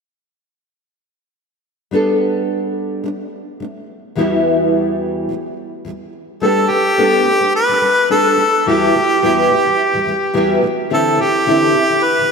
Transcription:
1.91 nylon-string guitar G3 B3 D4 A4
3.04 nylon-string guitar G3 D4
3.60 nylon-string guitar G3 D4
4.15 nylon-string guitar E2 E3 G3 B3 E4 F#4
5.29 nylon-string guitar E2 E3 G3
5.85 nylon-string guitar E2 E3 G3
6.41 nylon-string guitar G3 B3 D4 A4, harmonica A4
6.69 nylon-string guitar G3 D4, harmonica G4
6.98 nylon-string guitar G3 B3 D4 A4
7.25 nylon-string guitar G3 D4
7.40 nylon-string guitar G3 D4
7.56 harmonica B4
7.69 nylon-string guitar G3 D4
7.82 nylon-string guitar G3 D4
8.10 nylon-string guitar G3 B3 D4 A4, harmonica A4
8.37 nylon-string guitar G3 D4
8.66 nylon-string guitar E2 E3 G3 B3 E4 F#4, harmonica G4
8.94 nylon-string guitar E2 E3 G3
9.22 nylon-string guitar E2 E3 G3 B3 E4 F#4
9.50 nylon-string guitar E2 E3 G3
9.65 nylon-string guitar E2 E3 G3
9.93 nylon-string guitar E2 E3 G3
10.06 nylon-string guitar E2 E3 G3
10.33 nylon-string guitar E2 E3 G3 B3 E4 F#4
10.62 nylon-string guitar E2 E3 G3
10.90 nylon-string guitar D3 E3 C4 E4 G4, harmonica A4
11.18 nylon-string guitar D3 E3, harmonica G4
11.46 nylon-string guitar D3 E3 C4 E4 G4
11.75 nylon-string guitar D3 E3
11.90 nylon-string guitar D3 E3
12.04 harmonica B4
12.18 nylon-string guitar D3 E3

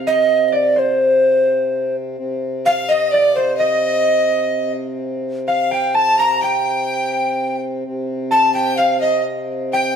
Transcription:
Already playing: harmonium C3, harp F5
0.07 harp D#5, recorder D#5
0.48 recorder D#5
0.52 harp D5, recorder D5
0.76 harp C5, recorder C5
2.18 harmonium C3
2.66 recorder F5, fiddle F5, harp F5
2.89 recorder D#5, fiddle D#5, harp D#5
3.11 fiddle D5, recorder D5, harp D5
3.35 recorder C5, fiddle C5, harp C5
3.57 recorder D#5, fiddle D#5, harp D#5
5.48 fiddle F5, harp F5, recorder F5
5.71 harp G5, recorder G5
5.94 harp A5, recorder A5, fiddle A5
6.18 fiddle A#5, harp A#5, recorder A#5
6.41 fiddle G5, harp G5, recorder G5
7.85 harmonium C3
8.31 harp A5, recorder A5, fiddle A5
8.54 recorder G5, harp G5, fiddle G5
8.77 recorder F5, fiddle F5, harp F5
9.01 fiddle D#5, recorder D#5, harp D#5
9.73 fiddle G5, harp G5, recorder G5

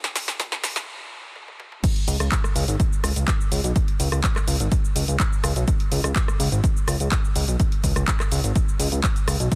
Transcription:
0.04 snare, closed hi-hat, shaker
0.16 snare, open hi-hat, shaker
0.28 snare, closed hi-hat, shaker
0.40 kick, snare, closed hi-hat, shaker
0.52 kick, snare, shaker
0.64 snare, open hi-hat, shaker
0.76 snare, closed hi-hat, shaker
1.36 high tom
1.48 high tom
1.60 mid tom
1.72 mid tom
1.84 kick, closed hi-hat, crash, shaker
1.96 closed hi-hat
2.08 analog synth bass C#2, open hi-hat, shaker
2.20 analog synth bass C#2, cross-stick, closed hi-hat, shaker
2.32 kick, clap, closed hi-hat, shaker
2.44 cross-stick, shaker
2.56 analog synth bass C#2, open hi-hat, shaker
2.68 analog synth bass G#1, closed hi-hat, shaker
2.80 kick, closed hi-hat, shaker
2.93 shaker
3.04 analog synth bass C#2, cross-stick, open hi-hat, shaker
3.16 analog synth bass C#2, closed hi-hat, shaker
3.28 kick, clap, closed hi-hat, shaker
3.41 shaker
3.52 analog synth bass C#2, open hi-hat, shaker
3.64 analog synth bass B1, closed hi-hat, shaker
3.76 kick, closed hi-hat, shaker
3.88 closed hi-hat
4.00 analog synth bass C#2, open hi-hat, shaker
4.12 analog synth bass C#2, cross-stick, closed hi-hat, shaker
4.24 kick, clap, closed hi-hat, shaker
4.36 cross-stick, clap, shaker
4.48 analog synth bass C#2, open hi-hat, shaker
4.60 analog synth bass G#1, closed hi-hat, shaker
4.72 kick, closed hi-hat, shaker
4.85 shaker
4.96 analog synth bass C#2, open hi-hat, shaker
5.08 analog synth bass C#2, closed hi-hat, shaker
5.20 kick, clap, closed hi-hat, shaker
5.33 shaker
5.44 analog synth bass C#2, cross-stick, open hi-hat, shaker
5.56 analog synth bass B1, closed hi-hat, shaker
5.68 kick, closed hi-hat, shaker
5.80 closed hi-hat
5.92 analog synth bass C#2, open hi-hat, shaker
6.04 analog synth bass C#2, cross-stick, closed hi-hat, shaker
6.16 kick, clap, closed hi-hat, shaker
6.28 cross-stick, shaker
6.40 analog synth bass C#2, open hi-hat, shaker
6.52 analog synth bass G#1, closed hi-hat, shaker
6.64 kick, closed hi-hat, shaker
6.77 shaker
6.88 analog synth bass C#2, cross-stick, open hi-hat, shaker
7.00 analog synth bass C#2, closed hi-hat, shaker
7.12 kick, clap, closed hi-hat, shaker
7.25 shaker
7.36 analog synth bass C#2, open hi-hat, shaker
7.48 analog synth bass B1, closed hi-hat, shaker
7.60 kick, closed hi-hat, shaker
7.72 closed hi-hat
7.84 analog synth bass C#2, kick, open hi-hat, shaker
7.96 analog synth bass C#2, cross-stick, closed hi-hat, shaker
8.08 kick, clap, closed hi-hat, shaker
8.20 cross-stick, clap, shaker
8.31 analog synth bass C#2, open hi-hat, shaker
8.44 analog synth bass G#1, closed hi-hat, shaker
8.56 kick, closed hi-hat, shaker
8.69 shaker
8.79 analog synth bass C#2, open hi-hat, shaker
8.92 analog synth bass C#2, closed hi-hat, shaker
9.04 kick, clap, closed hi-hat, shaker
9.16 closed hi-hat, shaker
9.28 analog synth bass C#2, cross-stick, open hi-hat, shaker
9.40 analog synth bass B1, closed hi-hat, shaker
9.52 kick, closed hi-hat, ride

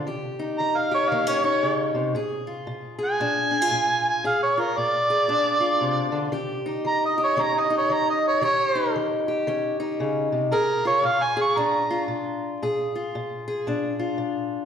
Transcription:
0.07 steel-string acoustic guitar D#3 G4
0.39 steel-string acoustic guitar D#4
0.58 steel-string acoustic guitar D#3, harmonica A#5
0.77 harmonica F5
0.91 steel-string acoustic guitar G4, harmonica C#5
1.09 steel-string acoustic guitar D#3 A#3, harmonica F5
1.27 steel-string acoustic guitar C#4, harmonica C#5
1.44 steel-string acoustic guitar D#4, harmonica C#5
1.63 steel-string acoustic guitar C#3
1.95 steel-string acoustic guitar C3
2.15 steel-string acoustic guitar A#2 G#4
2.47 steel-string acoustic guitar F4
2.67 steel-string acoustic guitar A#2
2.99 steel-string acoustic guitar G#4
3.05 harmonica G#5
3.20 steel-string acoustic guitar A#2 D4
3.51 steel-string acoustic guitar D4
3.62 steel-string acoustic guitar F4
3.71 steel-string acoustic guitar A#2
4.09 harmonica G#5
4.24 steel-string acoustic guitar A#2 G#4, harmonica F5
4.43 harmonica C#5
4.58 steel-string acoustic guitar F4, harmonica A#4
4.78 steel-string acoustic guitar A#2, harmonica D5
5.10 steel-string acoustic guitar G#4
5.28 steel-string acoustic guitar A#2 D4
5.60 steel-string acoustic guitar F4
5.81 steel-string acoustic guitar C3
6.12 steel-string acoustic guitar D3
6.32 steel-string acoustic guitar D#3 G4
6.66 steel-string acoustic guitar D#4
6.85 steel-string acoustic guitar D#3, harmonica A#5
7.06 harmonica D#5
7.18 steel-string acoustic guitar G4
7.24 harmonica C#5
7.37 steel-string acoustic guitar D#3 C#4
7.42 harmonica A#5
7.59 harmonica D#5
7.70 steel-string acoustic guitar D#4
7.78 harmonica C#5
7.89 steel-string acoustic guitar D#3
7.94 harmonica A#5
8.10 harmonica D#5
8.27 harmonica C#5
8.42 steel-string acoustic guitar D#3 G4, harmonica C#5
8.75 steel-string acoustic guitar D#4
8.96 steel-string acoustic guitar D#3
9.28 steel-string acoustic guitar G4
9.47 steel-string acoustic guitar D#3 C#4
9.80 steel-string acoustic guitar D#4
10.00 steel-string acoustic guitar C#3
10.32 steel-string acoustic guitar C3
10.52 steel-string acoustic guitar A#2 G#4, harmonica A#4
10.85 steel-string acoustic guitar F4, harmonica C#5
11.03 steel-string acoustic guitar A#2, harmonica F5
11.23 harmonica G#5
11.37 steel-string acoustic guitar G#4
11.42 harmonica C#6
11.57 steel-string acoustic guitar A#2 D4, harmonica A#5
11.90 steel-string acoustic guitar F4
12.08 steel-string acoustic guitar A#2
12.62 steel-string acoustic guitar A#2 G#4
12.96 steel-string acoustic guitar F4
13.15 steel-string acoustic guitar A#2
13.48 steel-string acoustic guitar G#4
13.67 steel-string acoustic guitar A#2 D4
13.99 steel-string acoustic guitar F4
14.18 steel-string acoustic guitar A#2

